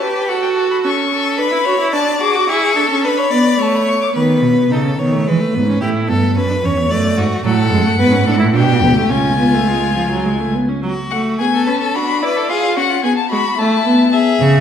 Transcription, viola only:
0.02 0.30 G4 medium
0.29 0.86 F#4 medium
0.84 1.40 C#4 medium
1.39 1.51 D4 medium
1.52 1.58 E4 medium
1.66 1.79 F#4 medium
1.80 1.95 E4 medium
1.93 2.21 D4 medium
2.21 2.37 G#4 medium
2.35 2.49 F#4 medium
2.49 2.76 E4 medium
2.77 2.90 D4 medium
2.91 3.06 C#4 medium
3.05 3.32 D4 medium
3.32 3.59 B3 medium
3.60 4.14 A3 medium
4.15 4.72 B3 medium
4.71 4.84 D#4 medium
4.85 4.90 C#4 soft
4.98 5.14 B3 medium
5.12 5.28 A3 medium
5.27 5.42 G#3 medium
5.41 5.56 A3 medium
5.55 5.67 B3 medium
5.67 5.83 C#4 medium
5.82 6.10 E4 medium
6.08 6.38 B3 medium
6.36 6.50 C#4 medium
6.50 6.56 D4 medium
6.63 6.79 C#4 medium
6.77 6.90 B3 medium
6.90 7.44 A3 medium
7.45 7.53 F#3 medium
7.72 7.85 G#3 medium
7.85 7.91 A3 medium
7.99 8.13 B3 medium
8.12 8.26 C#4 medium
8.27 8.38 D4 medium
8.39 8.45 E4 medium
8.53 8.82 D4 medium
8.82 8.96 B3 medium
8.97 9.12 A3 medium
9.10 9.38 C#4 medium
9.39 9.55 B3 medium
9.54 9.69 A3 medium
9.68 9.95 G#3 medium
9.96 10.10 F3 medium
10.11 10.27 F#3 medium
10.25 10.41 G#3 medium
10.40 10.56 A3 medium
10.55 10.70 B3 medium
10.69 10.82 C#4 medium
10.83 10.91 F#3 medium
11.12 11.41 A3 medium
11.40 11.69 B3 medium
11.68 11.97 C#4 medium
11.95 12.24 D4 medium
12.22 12.51 E4 medium
12.49 12.78 F4 medium
12.77 13.03 C#4 medium
13.04 13.12 B3 medium
13.32 13.40 G#3 medium
13.59 13.85 A3 medium
13.86 14.12 B3 medium

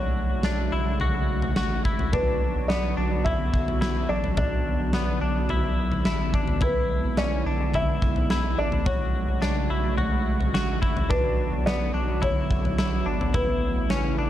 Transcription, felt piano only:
0.00 0.96 C#5 medium
2.13 2.70 B4 medium
2.68 3.26 D5 medium
3.25 4.11 E5 loud
4.09 4.36 D5 medium
4.38 5.46 D5 medium
6.63 7.20 B4 medium
7.18 7.75 D5 medium
7.75 8.61 E5 medium
8.58 8.87 D5 medium
8.86 9.94 C#5 medium
11.09 11.67 B4 medium
11.66 12.24 D5 medium
12.23 13.38 C#5 medium
13.34 14.30 B4 medium

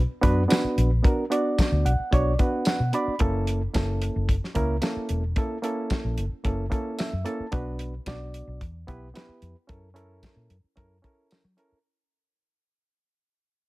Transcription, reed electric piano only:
0.21 0.42 B3 loud
0.21 0.42 D4 medium
0.21 0.43 F#4 medium
0.21 0.43 B4 loud
0.48 0.89 B3 medium
0.48 0.89 D4 medium
0.48 0.90 F#4 medium
0.48 0.90 B4 medium
1.03 1.23 B3 medium
1.03 1.24 D4 medium
1.03 1.24 F#4 medium
1.03 1.24 A#4 medium
1.30 1.91 B3 medium
1.30 1.91 D4 medium
1.30 1.91 F#4 medium
1.30 1.92 D5 medium
1.85 2.10 F#5 medium
2.11 2.32 B3 medium
2.11 2.32 D4 medium
2.11 2.32 F#4 medium
2.11 2.33 C#5 medium
2.11 2.38 D5 medium
2.39 2.79 B3 medium
2.39 2.79 D4 medium
2.39 2.80 F#4 medium
2.39 2.80 B4 medium
2.39 2.65 F#5 medium
2.67 2.92 F#5 medium
2.93 3.13 B3 medium
2.93 3.14 D4 medium
2.93 3.14 F#4 medium
2.93 3.14 D5 medium
2.93 3.19 B5 medium
3.20 3.60 A#3 medium
3.20 3.60 C#4 medium
3.20 3.61 E4 medium
3.20 3.61 A4 loud
3.73 4.34 A#3 medium
3.73 4.34 C#4 medium
3.73 4.35 E4 medium
3.73 4.35 A4 medium
4.55 4.75 A#3 loud
4.55 4.76 C#4 medium
4.55 4.76 E4 medium
4.55 4.76 A#4 loud
4.81 5.22 A#3 medium
4.81 5.23 C#4 medium
4.81 5.23 E4 medium
4.81 5.23 A4 medium
5.36 5.56 A#3 medium
5.36 5.57 C#4 medium
5.36 5.57 E4 medium
5.36 5.57 A4 medium
5.62 6.23 A#3 medium
5.62 6.23 C#4 medium
5.62 6.24 E4 medium
5.62 6.24 A4 loud
6.44 6.64 A#3 medium
6.44 6.65 C#4 medium
6.44 6.65 E4 medium
6.44 6.65 A4 medium
6.70 7.11 A#3 medium
6.70 7.11 C#4 medium
6.70 7.12 E4 medium
6.70 7.12 A4 medium
6.99 7.24 E5 medium
7.25 7.45 A#3 medium
7.25 7.46 C#4 medium
7.25 7.46 E4 medium
7.25 7.46 A4 loud
7.25 7.51 A5 medium
7.52 7.92 B3 medium
7.52 7.93 D4 medium
7.52 7.93 F#4 medium
7.52 7.93 B4 loud
8.06 8.61 B3 medium
8.06 8.61 D4 medium
8.06 8.61 F#4 medium
8.06 8.62 D5 medium
8.87 9.08 B3 loud
8.87 9.08 E4 medium
8.87 9.08 G4 medium
8.87 9.08 B4 loud
9.14 9.55 B3 medium
9.14 9.55 E4 medium
9.14 9.55 G4 medium
9.14 9.56 B4 loud
9.67 9.88 C#4 medium
9.67 9.88 E4 medium
9.67 9.89 A4 medium
9.67 9.89 A#4 medium
9.94 10.55 C#4 loud
9.94 10.55 E4 medium
9.94 10.56 A4 medium
9.94 10.56 A#4 loud
10.76 10.96 C#4 medium
10.76 10.97 E4 medium
10.76 10.97 A4 medium
10.76 10.97 A#4 loud
11.02 11.43 C#4 medium
11.02 11.43 E4 medium
11.02 11.44 A4 medium
11.02 11.44 A#4 loud
11.57 11.77 C#4 medium
11.57 11.78 E4 medium
11.57 11.78 A4 medium
11.57 11.78 A#4 loud

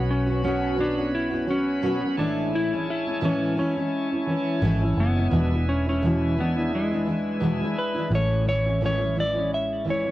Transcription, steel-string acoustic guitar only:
0.00 0.28 B3 soft
0.00 0.27 C#4 soft
0.00 0.25 F#4 medium
0.26 0.43 B3 soft
0.26 0.43 C#4 medium
0.26 0.43 F#4 medium
0.43 0.79 B2 medium
0.43 0.75 F#3 medium
0.43 0.76 B3 medium
0.43 0.77 C#4 medium
0.43 0.78 F#4 medium
0.76 0.97 F#3 medium
0.76 0.97 B3 medium
0.76 0.96 C#4 medium
0.76 0.95 F#4 medium
0.97 1.31 B3 soft
0.97 1.30 C#4 medium
0.97 1.29 F#4 medium
1.30 1.46 B3 soft
1.30 1.47 C#4 medium
1.30 1.47 F#4 medium
1.46 1.81 F#3 medium
1.46 1.82 B3 medium
1.46 1.82 C#4 medium
1.46 1.82 F#4 medium
1.82 2.02 B2 medium
1.82 2.02 F#3 medium
1.82 2.02 B3 medium
1.82 2.01 C#4 medium
1.82 2.01 F#4 medium
2.02 2.17 B3 soft
2.02 2.18 C#4 medium
2.02 2.18 F#4 medium
2.17 2.71 A2 medium
2.17 2.72 E3 medium
2.17 2.72 G#3 medium
2.17 2.70 E4 medium
2.71 3.07 G#3 soft
2.71 3.06 C#4 soft
2.71 3.05 E4 soft
3.06 3.20 G#3 soft
3.06 3.21 C#4 soft
3.06 3.20 E4 medium
3.21 3.56 A2 medium
3.21 3.54 E3 medium
3.21 3.55 G#3 medium
3.21 3.56 C#4 medium
3.21 3.57 E4 loud
3.56 3.76 E3 medium
3.56 3.76 G#3 medium
3.56 3.75 C#4 medium
3.56 3.74 E4 medium
3.75 4.11 G#3 soft
3.75 4.11 C#4 soft
3.75 4.10 E4 medium
4.11 4.26 G#3 soft
4.11 4.27 C#4 soft
4.11 4.27 E4 medium
4.26 4.60 E3 medium
4.26 4.61 G#3 medium
4.26 4.61 C#4 medium
4.26 4.62 E4 medium
4.61 4.81 A2 medium
4.61 4.81 E3 medium
4.61 4.81 G#3 loud
4.61 4.81 C#4 medium
4.61 4.81 E4 loud
4.82 5.17 G#3 soft
4.82 5.16 C#4 medium
4.82 5.15 E4 soft
5.16 5.30 G#3 medium
5.16 5.32 C#4 medium
5.16 5.31 E4 medium
5.31 5.50 E2 medium
5.31 5.50 B2 medium
5.31 5.50 E3 medium
5.31 5.50 G#3 medium
5.31 5.50 D4 medium
5.31 5.50 E4 medium
5.51 5.87 E3 soft
5.51 5.86 G#3 soft
5.51 5.86 D4 medium
5.51 5.85 E4 medium
5.86 6.02 E3 soft
5.86 6.02 G#3 soft
5.86 6.02 D4 soft
5.86 6.01 E4 medium
6.02 6.37 E2 medium
6.02 6.37 B2 medium
6.02 6.36 E3 medium
6.02 6.37 G#3 medium
6.02 6.38 E4 medium
6.37 6.56 E3 medium
6.37 6.56 G#3 medium
6.37 6.55 D4 medium
6.37 6.54 E4 medium
6.56 6.91 E3 soft
6.56 6.91 G#3 soft
6.56 6.90 D4 soft
6.56 6.90 E4 medium
6.91 7.04 E3 soft
6.91 7.06 G#3 soft
6.91 7.06 D4 medium
6.91 7.06 E4 medium
7.06 7.39 E3 medium
7.06 7.40 G#3 medium
7.06 7.40 D4 medium
7.06 7.40 E4 medium
7.40 7.60 E2 medium
7.40 7.60 B2 medium
7.40 7.60 E3 medium
7.40 7.60 G#3 medium
7.40 7.60 D4 medium
7.40 7.59 E4 medium
7.60 7.96 E3 soft
7.60 7.95 G#3 medium
7.60 7.94 D4 medium
7.60 7.93 E4 medium
7.95 8.10 E3 medium
7.95 8.10 G#3 medium
7.95 8.11 D4 medium
7.95 8.10 E4 medium
8.11 8.46 A2 medium
8.11 8.44 E3 medium
8.11 8.44 G#3 medium
8.11 8.45 C#4 medium
8.11 8.46 E4 medium
8.45 8.65 E3 soft
8.45 8.65 G#3 medium
8.45 8.64 C#4 medium
8.45 8.63 E4 medium
8.64 8.81 G#3 soft
8.64 8.81 C#4 soft
8.64 8.80 E4 soft
8.81 9.00 A2 medium
8.81 9.00 E3 medium
8.81 9.00 G#3 medium
8.81 8.99 C#4 medium
8.81 8.98 E4 medium
8.99 9.15 G#3 soft
8.99 9.16 C#4 soft
8.99 9.15 E4 medium
9.15 9.35 E3 medium
9.15 9.35 G#3 medium
9.15 9.35 C#4 medium
9.15 9.34 E4 medium
9.35 9.84 G#3 soft
9.35 9.84 C#4 soft
9.35 9.85 E4 medium
9.85 10.04 E3 medium
9.85 10.05 G#3 medium
9.85 10.04 C#4 medium
9.85 10.02 E4 medium
10.04 10.11 G#3 soft
10.04 10.11 C#4 soft
10.04 10.11 E4 medium

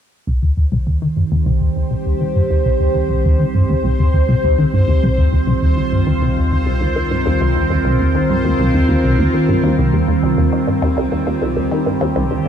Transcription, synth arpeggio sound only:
0.28 0.37 C2 medium
0.43 0.52 D#2 medium
0.57 0.63 D#2 medium
0.72 0.86 C2 medium
0.87 0.96 D#2 medium
1.02 1.16 D#3 medium
1.17 1.22 G2 medium
1.31 1.37 D#2 medium
1.46 1.56 C2 loud
1.61 1.71 D#2 medium
1.76 1.82 D#2 medium
1.91 2.05 C2 medium
2.06 2.15 D#2 medium
2.21 2.35 D#3 medium
2.35 2.41 G2 medium
2.50 2.56 D#2 loud
2.65 2.75 C2 medium
2.80 2.90 D#2 medium
2.95 3.01 D#2 medium
3.10 3.24 C2 medium
3.25 3.34 D#2 medium
3.39 3.54 D#3 medium
3.54 3.60 G2 medium
3.69 3.75 D#2 medium
3.84 3.94 C2 medium
3.99 4.08 D#2 medium
4.14 4.20 D#2 medium
4.29 4.43 C2 medium
4.44 4.53 D#2 medium
4.58 4.73 D#3 medium
4.73 4.79 G2 medium
4.88 4.94 D#2 medium
5.03 5.12 C2 loud
5.18 5.27 D#2 medium
5.33 5.38 D#2 medium
5.47 5.62 C2 loud
5.62 5.72 D#2 medium
5.77 5.91 D#3 medium
5.92 5.98 G2 medium
6.07 6.13 D#2 medium
6.22 6.31 C2 medium
6.37 6.46 D#2 medium
6.52 6.57 D#2 medium
6.66 6.80 C2 medium
6.81 6.91 D#2 medium
6.96 7.10 D#3 medium
7.11 7.17 G2 medium
7.26 7.32 D#2 loud
7.41 7.50 C2 loud
7.56 7.65 D#2 medium
7.70 7.76 D#2 medium
7.85 7.99 C2 medium
8.00 8.10 D#2 medium
8.15 8.29 D#3 medium
8.30 8.36 G2 medium
8.45 8.50 D#2 loud
8.59 8.69 C2 medium
8.74 8.84 D#2 medium
8.89 8.95 D#2 medium
9.04 9.18 C2 medium
9.19 9.28 D#2 medium
9.34 9.48 D#3 medium
9.48 9.54 G2 medium
9.63 9.69 D#2 loud
9.78 9.88 C2 medium
9.93 10.03 D#2 medium
10.08 10.14 D#2 medium
10.23 10.37 C2 loud
10.38 10.47 D#2 medium
10.53 10.67 D#3 medium
10.67 10.73 G2 medium
10.82 10.88 D#2 medium
10.97 11.06 C2 medium
11.12 11.21 D#2 medium
11.27 11.33 D#2 medium
11.42 11.56 C2 medium
11.57 11.66 D#2 medium
11.71 11.86 D#3 medium
11.86 11.92 G2 medium
12.01 12.07 D#2 loud
12.16 12.25 C2 medium
12.31 12.40 D#2 medium

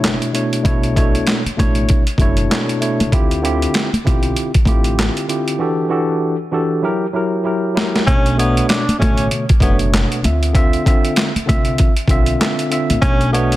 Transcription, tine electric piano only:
0.00 0.29 B2 medium
0.00 0.30 A3 medium
0.00 0.30 D4 medium
0.00 0.30 E4 loud
0.00 0.31 C#5 loud
0.32 0.62 B2 medium
0.32 0.62 A3 medium
0.32 0.63 D4 medium
0.32 0.63 E4 medium
0.32 0.63 C#5 medium
0.63 0.93 B2 medium
0.63 0.93 A3 medium
0.63 0.94 D4 medium
0.63 0.94 E4 medium
0.63 0.94 C#5 loud
0.95 1.40 B2 medium
0.95 1.41 A3 medium
0.95 1.41 D4 medium
0.95 1.41 E4 medium
0.95 1.42 C#5 loud
1.57 2.02 B2 medium
1.57 2.02 A3 medium
1.57 2.03 D4 medium
1.57 2.03 E4 medium
1.57 2.03 C#5 loud
2.19 2.48 B2 medium
2.19 2.49 A3 medium
2.19 2.49 D4 medium
2.19 2.49 E4 medium
2.19 2.50 C#5 loud
2.49 2.78 B2 medium
2.49 2.79 A3 medium
2.49 2.79 D4 medium
2.49 2.80 E4 medium
2.49 2.80 C#5 medium
2.80 3.09 B2 medium
2.80 3.10 A3 medium
2.80 3.10 D4 medium
2.80 3.10 E4 medium
2.80 3.11 C#5 medium
3.12 3.41 D3 medium
3.12 3.41 C4 medium
3.12 3.42 E4 medium
3.12 3.42 F4 medium
3.12 3.42 G4 loud
3.42 3.88 D3 loud
3.42 3.88 C4 medium
3.42 3.88 E4 medium
3.42 3.89 F4 medium
3.42 3.89 G4 loud
4.04 4.49 D3 medium
4.04 4.50 C4 medium
4.04 4.50 E4 medium
4.04 4.50 F4 medium
4.04 4.51 G4 loud
4.66 5.24 D3 loud
4.66 5.24 C4 medium
4.66 5.25 E4 medium
4.66 5.25 F4 medium
4.66 5.25 G4 loud
5.27 5.57 D3 medium
5.27 5.57 C4 medium
5.27 5.58 E4 medium
5.27 5.58 F4 medium
5.27 5.58 G4 medium
5.59 5.88 E3 loud
5.59 5.88 D4 medium
5.59 5.89 F#4 medium
5.59 5.89 G4 medium
5.59 5.89 A4 medium
5.89 6.35 E3 medium
5.89 6.35 D4 medium
5.89 6.35 F#4 medium
5.89 6.36 G4 medium
5.89 6.36 A4 medium
6.51 6.83 E3 medium
6.51 6.83 D4 medium
6.51 6.84 F#4 medium
6.51 6.83 G4 medium
6.51 6.84 A4 loud
6.82 7.05 F#3 medium
6.82 7.05 E4 medium
6.82 7.06 G4 medium
6.82 7.06 A#4 loud
7.13 7.42 F#3 medium
7.13 7.43 E4 medium
7.13 7.44 G4 medium
7.13 7.44 A#4 loud
7.44 7.73 F#3 medium
7.44 7.74 E4 medium
7.44 7.74 G4 medium
7.44 7.75 A#4 medium
7.74 8.04 F#3 medium
7.74 8.05 E4 medium
7.74 8.05 G4 medium
7.74 8.06 A#4 medium
8.06 8.36 B2 medium
8.06 8.36 A3 medium
8.06 8.37 D4 medium
8.06 8.37 C#5 loud
8.37 8.82 B2 loud
8.37 8.83 A3 medium
8.37 8.83 D4 medium
8.37 8.84 C#5 loud
8.98 9.44 B2 medium
8.98 9.45 D3 medium
8.98 9.44 A3 medium
8.98 9.45 C#5 loud
9.60 10.19 B2 medium
9.60 10.19 A3 medium
9.60 10.20 D4 medium
9.60 10.20 C#5 loud
10.22 10.52 D3 medium
10.22 10.52 C4 medium
10.22 10.53 F4 medium
10.22 10.53 E5 medium
10.53 10.83 D3 loud
10.53 10.83 C4 medium
10.53 10.84 F4 medium
10.53 10.84 E5 loud
10.85 11.30 D3 medium
10.85 11.30 C4 medium
10.85 11.31 F4 medium
10.85 11.31 E5 loud
11.46 11.91 D3 loud
11.46 11.92 C4 medium
11.46 11.92 F4 medium
11.46 11.93 E5 loud
12.08 12.38 D3 loud
12.08 12.38 C4 medium
12.08 12.39 F4 medium
12.08 12.39 E5 loud
12.39 12.68 D3 medium
12.39 12.69 C4 medium
12.39 12.69 F4 medium
12.39 12.70 E5 medium
12.70 12.99 D3 medium
12.70 13.00 C4 medium
12.70 13.00 F4 medium
12.70 13.01 E5 medium
13.01 13.30 B2 medium
13.01 13.31 A3 medium
13.01 13.31 D4 medium
13.01 13.32 C#5 loud
13.32 13.56 B2 loud
13.32 13.56 A3 medium
13.32 13.56 D4 medium
13.32 13.56 C#5 loud

